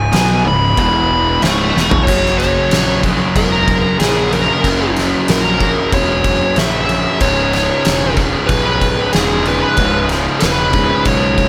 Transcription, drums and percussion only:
0.13 snare loud
0.13 crash medium
0.77 kick loud
0.77 crash medium
1.42 snare loud
1.42 crash medium
1.77 snare medium
1.91 floor tom medium
2.07 kick loud
2.07 crash loud
2.07 crash medium
2.26 snare soft
2.40 snare soft
2.40 crash medium
2.71 snare loud
2.71 crash loud
3.03 kick medium
3.03 crash medium
3.36 kick loud
3.36 crash medium
3.68 kick medium
3.68 crash medium
4.00 snare loud
4.00 crash medium
4.32 crash medium
4.64 kick loud
4.64 crash medium
4.96 snare soft
4.96 crash medium
5.28 snare loud
5.28 crash medium
5.60 kick loud
5.60 crash medium
5.92 kick loud
5.92 crash medium
6.24 kick medium
6.24 crash medium
6.56 snare loud
6.56 crash medium
6.89 crash medium
7.20 kick loud
7.20 crash medium
7.53 snare soft
7.53 crash medium
7.85 snare loud
7.85 crash medium
8.17 kick medium
8.17 crash medium
8.49 kick loud
8.49 crash medium
8.81 kick medium
8.81 crash medium
9.13 snare loud
9.13 crash medium
9.45 crash medium
9.77 kick loud
9.77 crash medium
10.09 snare soft
10.09 crash medium
10.40 snare loud
10.40 crash medium
10.73 kick loud
10.73 crash medium
11.05 kick loud
11.05 crash medium
11.38 kick medium
11.38 crash medium

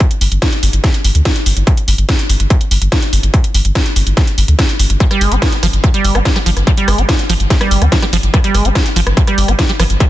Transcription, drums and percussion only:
0.00 kick loud
0.00 closed hi-hat medium
0.11 closed hi-hat medium
0.21 open hi-hat loud
0.32 closed hi-hat medium
0.42 kick loud
0.42 snare loud
0.42 closed hi-hat medium
0.52 closed hi-hat medium
0.63 open hi-hat loud
0.73 closed hi-hat medium
0.84 kick loud
0.84 snare medium
0.84 closed hi-hat medium
0.94 closed hi-hat medium
1.04 open hi-hat loud
1.15 closed hi-hat medium
1.25 kick loud
1.25 snare loud
1.25 closed hi-hat medium
1.36 closed hi-hat medium
1.46 open hi-hat loud
1.57 closed hi-hat medium
1.67 kick loud
1.67 closed hi-hat medium
1.77 closed hi-hat medium
1.88 open hi-hat loud
1.98 closed hi-hat soft
2.09 kick loud
2.09 snare loud
2.09 closed hi-hat medium
2.19 closed hi-hat medium
2.30 open hi-hat loud
2.40 closed hi-hat soft
2.50 kick loud
2.50 closed hi-hat medium
2.61 closed hi-hat medium
2.71 open hi-hat loud
2.82 closed hi-hat soft
2.92 kick loud
2.92 snare loud
2.92 closed hi-hat medium
3.02 closed hi-hat medium
3.13 open hi-hat loud
3.23 closed hi-hat medium
3.34 kick loud
3.34 closed hi-hat medium
3.44 closed hi-hat medium
3.54 open hi-hat loud
3.65 closed hi-hat soft
3.75 kick loud
3.75 snare loud
3.75 closed hi-hat medium
3.86 closed hi-hat soft
3.96 open hi-hat loud
4.07 closed hi-hat soft
4.17 kick loud
4.17 snare medium
4.17 closed hi-hat medium
4.27 closed hi-hat soft
4.38 open hi-hat loud
4.48 closed hi-hat soft
4.59 kick loud
4.59 snare loud
4.59 closed hi-hat medium
4.69 closed hi-hat soft
4.79 open hi-hat loud
4.90 closed hi-hat soft
5.00 kick loud
5.00 closed hi-hat medium
5.11 cross-stick soft
5.11 closed hi-hat medium
5.21 open hi-hat loud
5.32 closed hi-hat medium
5.42 kick loud
5.42 cross-stick medium
5.42 snare loud
5.42 closed hi-hat medium
5.52 closed hi-hat soft
5.63 cross-stick soft
5.63 open hi-hat loud
5.73 closed hi-hat soft
5.84 kick loud
5.84 cross-stick soft
5.84 closed hi-hat medium
5.94 closed hi-hat medium
6.05 open hi-hat loud
6.15 cross-stick medium
6.15 closed hi-hat soft
6.25 kick loud
6.25 snare loud
6.25 closed hi-hat medium
6.36 cross-stick soft
6.36 closed hi-hat medium
6.46 open hi-hat loud
6.57 cross-stick soft
6.57 closed hi-hat soft
6.67 kick loud
6.67 closed hi-hat medium
6.77 closed hi-hat medium
6.88 cross-stick medium
6.88 open hi-hat loud
6.98 closed hi-hat medium
7.09 kick loud
7.09 cross-stick soft
7.09 snare loud
7.09 closed hi-hat medium
7.19 closed hi-hat medium
7.30 open hi-hat loud
7.40 closed hi-hat medium
7.50 kick loud
7.50 snare medium
7.50 closed hi-hat medium
7.61 cross-stick medium
7.61 closed hi-hat medium
7.71 open hi-hat loud
7.82 cross-stick soft
7.82 closed hi-hat soft
7.92 kick loud
7.92 snare loud
7.92 closed hi-hat medium
8.02 cross-stick soft
8.02 closed hi-hat medium
8.13 open hi-hat loud
8.23 closed hi-hat medium
8.34 kick loud
8.34 cross-stick medium
8.34 closed hi-hat loud
8.44 closed hi-hat medium
8.55 cross-stick soft
8.55 open hi-hat loud
8.65 closed hi-hat medium
8.75 kick loud
8.75 cross-stick soft
8.75 snare loud
8.75 closed hi-hat loud
8.86 closed hi-hat medium
8.96 open hi-hat loud
9.07 cross-stick medium
9.07 closed hi-hat medium
9.17 kick loud
9.17 closed hi-hat loud
9.27 cross-stick soft
9.27 closed hi-hat medium
9.38 open hi-hat loud
9.48 cross-stick soft
9.48 closed hi-hat medium
9.59 kick loud
9.59 snare loud
9.59 closed hi-hat loud
9.69 closed hi-hat medium
9.80 cross-stick medium
9.80 open hi-hat loud
9.90 closed hi-hat medium
10.00 kick loud
10.00 cross-stick soft
10.00 closed hi-hat loud

